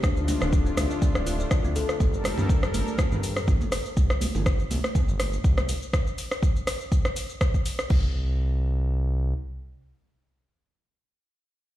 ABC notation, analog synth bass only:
X:1
M:4/4
L:1/16
Q:"Swing 16ths" 1/4=122
K:Gm
V:1 name="Analog synth bass" clef=bass
D,,2 z D,,,2 z D,, z2 D,,,2 z D,,2 z2 | G,,,2 z G,,2 z G,,, z2 G,,2 z G,,,2 z2 | C,,2 z G,,,2 z C,, z2 G,,,2 z C,,2 z2 | z16 |
C,,12 z4 | z16 |]